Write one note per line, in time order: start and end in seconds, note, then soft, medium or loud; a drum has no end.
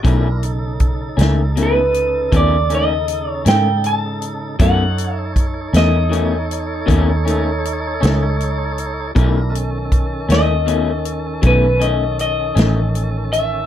0.03 1.15 B1 medium
0.03 0.27 B2 medium
0.03 0.27 D#3 medium
0.03 0.27 A3 medium
0.03 0.28 C#4 medium
0.03 0.43 D4 medium
0.03 0.43 E4 medium
0.03 0.43 A#4 medium
0.03 kick loud
0.03 closed hi-hat medium
0.43 4.56 C#3 medium
0.43 4.56 D#4 medium
0.43 4.56 A4 medium
0.43 closed hi-hat medium
0.80 kick medium
0.80 closed hi-hat soft
1.17 2.28 C#2 medium
1.17 1.41 D#3 soft
1.17 1.41 A3 medium
1.17 1.40 C#4 medium
1.17 closed hi-hat medium
1.21 snare medium
1.56 1.79 B2 soft
1.56 1.79 D#3 soft
1.56 1.79 A3 medium
1.56 1.79 C#4 medium
1.56 closed hi-hat soft
1.63 2.37 B4 medium
1.94 closed hi-hat soft
2.32 3.43 D#2 medium
2.32 2.55 B2 medium
2.32 2.55 D#3 medium
2.32 2.55 A3 medium
2.32 2.55 C#4 medium
2.32 kick medium
2.32 closed hi-hat medium
2.36 2.73 D5 medium
2.70 2.94 D#3 soft
2.70 2.93 A3 soft
2.70 2.92 C#4 soft
2.70 closed hi-hat soft
2.75 3.31 D#5 medium
3.08 closed hi-hat medium
3.31 3.48 C#5 medium
3.45 4.56 G#2 medium
3.45 3.69 D#3 soft
3.45 3.69 A3 soft
3.45 3.68 C#4 soft
3.45 3.86 G5 medium
3.45 snare loud
3.45 closed hi-hat medium
3.84 4.61 A5 medium
3.84 closed hi-hat medium
4.22 closed hi-hat soft
4.59 5.70 F#2 medium
4.59 4.82 B2 medium
4.59 4.82 D#3 medium
4.59 4.83 A3 medium
4.59 4.83 C#4 medium
4.59 9.11 D#4 medium
4.59 9.11 A4 medium
4.59 9.11 C#5 medium
4.59 5.14 F#5 medium
4.59 kick loud
4.59 closed hi-hat medium
4.98 closed hi-hat medium
5.14 5.33 E5 medium
5.36 kick medium
5.36 closed hi-hat medium
5.73 6.84 E2 medium
5.73 5.97 D#3 soft
5.73 5.97 A3 soft
5.73 5.96 C#4 soft
5.73 8.75 D#5 medium
5.73 snare medium
5.73 closed hi-hat medium
6.09 6.33 B2 soft
6.09 6.34 D#3 soft
6.09 6.34 A3 medium
6.09 6.35 C#4 medium
6.09 closed hi-hat soft
6.51 closed hi-hat medium
6.86 7.98 D#2 medium
6.86 7.09 B2 medium
6.86 7.10 D#3 medium
6.86 7.10 A3 medium
6.86 7.10 C#4 medium
6.86 kick medium
6.86 closed hi-hat medium
7.25 7.49 D#3 soft
7.25 7.49 A3 soft
7.25 7.48 C#4 soft
7.25 closed hi-hat medium
7.65 closed hi-hat medium
8.01 9.13 C#2 medium
8.01 8.25 D#3 soft
8.01 8.24 A3 soft
8.01 8.24 C#4 soft
8.01 closed hi-hat medium
8.05 snare loud
8.40 closed hi-hat soft
8.78 closed hi-hat soft
9.15 10.26 B1 medium
9.15 9.38 B2 medium
9.15 9.38 D#3 medium
9.15 9.39 A3 medium
9.15 9.39 C#4 medium
9.15 9.54 D4 medium
9.15 9.53 E4 medium
9.15 9.54 A#4 medium
9.15 kick loud
9.15 closed hi-hat medium
9.50 13.65 D#3 medium
9.50 13.65 C#4 medium
9.50 13.65 A4 medium
9.55 closed hi-hat medium
9.92 kick medium
9.92 closed hi-hat medium
10.29 11.39 D#2 medium
10.29 10.53 D#3 soft
10.29 10.52 A3 soft
10.29 10.52 C#4 soft
10.29 11.40 D#5 medium
10.29 snare medium
10.29 closed hi-hat medium
10.66 10.89 B2 soft
10.66 10.90 D#3 medium
10.66 10.90 A3 medium
10.66 10.90 C#4 medium
10.66 closed hi-hat medium
11.05 closed hi-hat medium
11.42 12.54 B1 medium
11.42 11.65 B2 medium
11.42 11.66 D#3 medium
11.42 11.66 A3 medium
11.42 11.66 C#4 medium
11.42 kick medium
11.42 closed hi-hat medium
11.47 11.84 B4 medium
11.80 12.04 D#3 soft
11.80 12.04 A3 soft
11.80 12.03 C#4 soft
11.80 12.17 D#5 medium
11.80 closed hi-hat medium
12.19 13.29 D#5 medium
12.19 closed hi-hat medium
12.55 13.66 A1 medium
12.55 12.80 D#3 soft
12.55 12.79 A3 soft
12.55 12.79 C#4 soft
12.55 snare medium
12.55 closed hi-hat medium
12.95 closed hi-hat soft
13.33 13.66 E5 medium
13.33 closed hi-hat soft